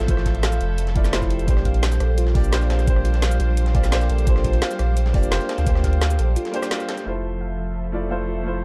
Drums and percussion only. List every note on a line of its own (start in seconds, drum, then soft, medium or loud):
0.08 kick loud
0.08 closed hi-hat medium
0.08 shaker soft
0.17 cross-stick soft
0.17 snare soft
0.26 kick medium
0.26 snare soft
0.26 closed hi-hat medium
0.26 shaker soft
0.35 closed hi-hat soft
0.43 snare loud
0.43 closed hi-hat medium
0.43 shaker soft
0.52 closed hi-hat soft
0.52 shaker medium
0.61 closed hi-hat medium
0.61 shaker soft
0.78 closed hi-hat medium
0.78 shaker soft
0.87 snare soft
0.87 closed hi-hat soft
0.96 kick loud
0.96 closed hi-hat medium
1.04 snare soft
1.04 shaker medium
1.13 snare loud
1.13 closed hi-hat medium
1.13 shaker soft
1.22 kick medium
1.22 snare soft
1.22 shaker soft
1.30 closed hi-hat medium
1.39 closed hi-hat soft
1.39 shaker soft
1.48 kick loud
1.48 closed hi-hat medium
1.48 shaker soft
1.57 cross-stick soft
1.57 snare soft
1.65 kick medium
1.65 closed hi-hat medium
1.74 closed hi-hat soft
1.83 snare loud
1.83 closed hi-hat medium
1.83 shaker soft
1.92 snare soft
1.92 closed hi-hat soft
1.92 shaker medium
2.00 cross-stick soft
2.00 closed hi-hat medium
2.00 shaker soft
2.18 closed hi-hat medium
2.18 shaker soft
2.27 snare medium
2.35 kick loud
2.35 closed hi-hat medium
2.35 open hi-hat medium
2.44 closed hi-hat soft
2.44 shaker medium
2.53 snare loud
2.53 closed hi-hat medium
2.53 shaker soft
2.61 snare soft
2.61 shaker soft
2.70 snare loud
2.70 closed hi-hat medium
2.79 snare soft
2.79 closed hi-hat soft
2.79 shaker soft
2.87 kick loud
2.87 closed hi-hat medium
2.87 shaker soft
2.96 cross-stick soft
3.05 closed hi-hat medium
3.05 shaker soft
3.14 snare soft
3.14 closed hi-hat soft
3.22 snare loud
3.22 closed hi-hat medium
3.22 shaker medium
3.31 closed hi-hat soft
3.31 shaker medium
3.40 closed hi-hat medium
3.40 shaker soft
3.57 closed hi-hat medium
3.57 shaker soft
3.66 snare soft
3.66 closed hi-hat soft
3.75 kick loud
3.75 closed hi-hat medium
3.84 snare soft
3.84 shaker medium
3.92 snare loud
3.92 closed hi-hat medium
3.92 shaker soft
4.01 snare soft
4.01 shaker soft
4.10 closed hi-hat medium
4.18 closed hi-hat soft
4.18 shaker soft
4.27 kick loud
4.27 closed hi-hat medium
4.27 shaker medium
4.36 cross-stick soft
4.36 snare soft
4.44 kick medium
4.44 closed hi-hat medium
4.53 closed hi-hat soft
4.62 snare loud
4.62 closed hi-hat medium
4.62 shaker medium
4.71 snare soft
4.71 closed hi-hat soft
4.71 shaker medium
4.79 cross-stick soft
4.79 closed hi-hat medium
4.79 shaker soft
4.97 closed hi-hat medium
4.97 shaker soft
5.06 snare medium
5.14 kick loud
5.14 closed hi-hat medium
5.14 open hi-hat medium
5.23 closed hi-hat soft
5.23 shaker medium
5.32 snare loud
5.32 closed hi-hat medium
5.32 shaker soft
5.41 snare soft
5.41 shaker soft
5.49 snare loud
5.49 closed hi-hat medium
5.58 snare soft
5.58 closed hi-hat soft
5.58 shaker soft
5.67 kick loud
5.67 closed hi-hat loud
5.67 closed hi-hat medium
5.67 shaker medium
5.75 cross-stick soft
5.75 snare soft
5.84 kick medium
5.84 snare soft
5.84 closed hi-hat medium
5.84 shaker soft
5.93 closed hi-hat soft
6.01 snare loud
6.01 closed hi-hat medium
6.01 closed hi-hat loud
6.01 shaker soft
6.10 closed hi-hat soft
6.10 shaker medium
6.19 closed hi-hat medium
6.19 shaker soft
6.36 closed hi-hat medium
6.36 shaker medium
6.45 snare soft
6.45 closed hi-hat soft
6.54 closed hi-hat medium
6.63 cross-stick medium
6.63 snare soft
6.63 shaker medium
6.71 snare loud
6.71 closed hi-hat medium
6.71 open hi-hat medium
6.71 shaker soft
6.80 closed hi-hat soft
6.80 shaker soft
6.89 snare loud
6.89 closed hi-hat medium
6.97 snare soft
6.97 closed hi-hat soft
6.97 shaker soft